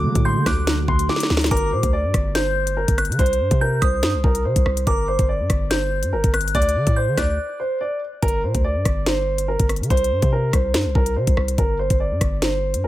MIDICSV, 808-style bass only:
0, 0, Header, 1, 2, 480
1, 0, Start_track
1, 0, Key_signature, -2, "minor"
1, 0, Tempo, 419580
1, 1730, Time_signature, 4, 2, 24, 8
1, 14730, End_track
2, 0, Start_track
2, 0, Title_t, "808-style bass"
2, 0, Program_c, 0, 38
2, 50, Note_on_c, 0, 50, 103
2, 171, Note_off_c, 0, 50, 0
2, 177, Note_on_c, 0, 45, 108
2, 417, Note_on_c, 0, 50, 96
2, 434, Note_off_c, 0, 45, 0
2, 524, Note_off_c, 0, 50, 0
2, 530, Note_on_c, 0, 38, 114
2, 991, Note_off_c, 0, 38, 0
2, 1009, Note_on_c, 0, 38, 104
2, 1240, Note_off_c, 0, 38, 0
2, 1490, Note_on_c, 0, 38, 102
2, 1720, Note_off_c, 0, 38, 0
2, 1730, Note_on_c, 0, 31, 103
2, 1970, Note_on_c, 0, 46, 98
2, 1987, Note_off_c, 0, 31, 0
2, 2091, Note_off_c, 0, 46, 0
2, 2097, Note_on_c, 0, 38, 102
2, 2337, Note_on_c, 0, 43, 97
2, 2354, Note_off_c, 0, 38, 0
2, 2444, Note_off_c, 0, 43, 0
2, 2450, Note_on_c, 0, 31, 109
2, 3263, Note_off_c, 0, 31, 0
2, 3297, Note_on_c, 0, 31, 104
2, 3537, Note_on_c, 0, 50, 99
2, 3554, Note_off_c, 0, 31, 0
2, 3644, Note_off_c, 0, 50, 0
2, 3649, Note_on_c, 0, 36, 105
2, 3890, Note_on_c, 0, 43, 98
2, 3907, Note_off_c, 0, 36, 0
2, 4011, Note_off_c, 0, 43, 0
2, 4017, Note_on_c, 0, 48, 99
2, 4355, Note_off_c, 0, 48, 0
2, 4370, Note_on_c, 0, 36, 110
2, 4609, Note_on_c, 0, 43, 97
2, 4626, Note_off_c, 0, 36, 0
2, 4737, Note_on_c, 0, 36, 96
2, 4754, Note_off_c, 0, 43, 0
2, 4844, Note_off_c, 0, 36, 0
2, 4849, Note_on_c, 0, 36, 108
2, 5089, Note_on_c, 0, 48, 97
2, 5107, Note_off_c, 0, 36, 0
2, 5210, Note_off_c, 0, 48, 0
2, 5218, Note_on_c, 0, 36, 99
2, 5323, Note_off_c, 0, 36, 0
2, 5330, Note_on_c, 0, 36, 104
2, 5560, Note_off_c, 0, 36, 0
2, 5570, Note_on_c, 0, 31, 109
2, 5922, Note_off_c, 0, 31, 0
2, 5937, Note_on_c, 0, 31, 105
2, 6177, Note_on_c, 0, 43, 97
2, 6194, Note_off_c, 0, 31, 0
2, 6284, Note_off_c, 0, 43, 0
2, 6290, Note_on_c, 0, 31, 112
2, 6897, Note_on_c, 0, 43, 100
2, 6914, Note_off_c, 0, 31, 0
2, 7010, Note_on_c, 0, 31, 99
2, 7027, Note_off_c, 0, 43, 0
2, 7131, Note_off_c, 0, 31, 0
2, 7138, Note_on_c, 0, 31, 103
2, 7476, Note_off_c, 0, 31, 0
2, 7490, Note_on_c, 0, 38, 104
2, 7729, Note_on_c, 0, 50, 94
2, 7747, Note_off_c, 0, 38, 0
2, 7850, Note_off_c, 0, 50, 0
2, 7857, Note_on_c, 0, 45, 102
2, 8097, Note_on_c, 0, 50, 98
2, 8114, Note_off_c, 0, 45, 0
2, 8204, Note_off_c, 0, 50, 0
2, 8210, Note_on_c, 0, 38, 104
2, 8440, Note_off_c, 0, 38, 0
2, 9410, Note_on_c, 0, 31, 104
2, 9650, Note_on_c, 0, 46, 100
2, 9667, Note_off_c, 0, 31, 0
2, 9771, Note_off_c, 0, 46, 0
2, 9777, Note_on_c, 0, 38, 107
2, 10017, Note_on_c, 0, 43, 99
2, 10035, Note_off_c, 0, 38, 0
2, 10124, Note_off_c, 0, 43, 0
2, 10130, Note_on_c, 0, 31, 110
2, 10943, Note_off_c, 0, 31, 0
2, 10978, Note_on_c, 0, 31, 105
2, 11217, Note_on_c, 0, 50, 94
2, 11235, Note_off_c, 0, 31, 0
2, 11324, Note_off_c, 0, 50, 0
2, 11330, Note_on_c, 0, 36, 107
2, 11570, Note_on_c, 0, 43, 97
2, 11587, Note_off_c, 0, 36, 0
2, 11691, Note_off_c, 0, 43, 0
2, 11697, Note_on_c, 0, 48, 98
2, 12036, Note_off_c, 0, 48, 0
2, 12050, Note_on_c, 0, 36, 112
2, 12290, Note_on_c, 0, 43, 94
2, 12307, Note_off_c, 0, 36, 0
2, 12417, Note_on_c, 0, 36, 98
2, 12434, Note_off_c, 0, 43, 0
2, 12524, Note_off_c, 0, 36, 0
2, 12529, Note_on_c, 0, 36, 107
2, 12770, Note_on_c, 0, 48, 100
2, 12787, Note_off_c, 0, 36, 0
2, 12891, Note_off_c, 0, 48, 0
2, 12898, Note_on_c, 0, 36, 100
2, 13003, Note_off_c, 0, 36, 0
2, 13010, Note_on_c, 0, 36, 103
2, 13240, Note_off_c, 0, 36, 0
2, 13250, Note_on_c, 0, 31, 113
2, 13602, Note_off_c, 0, 31, 0
2, 13617, Note_on_c, 0, 31, 105
2, 13857, Note_on_c, 0, 43, 99
2, 13874, Note_off_c, 0, 31, 0
2, 13964, Note_off_c, 0, 43, 0
2, 13970, Note_on_c, 0, 31, 112
2, 14577, Note_on_c, 0, 43, 99
2, 14594, Note_off_c, 0, 31, 0
2, 14690, Note_on_c, 0, 31, 97
2, 14707, Note_off_c, 0, 43, 0
2, 14730, Note_off_c, 0, 31, 0
2, 14730, End_track
0, 0, End_of_file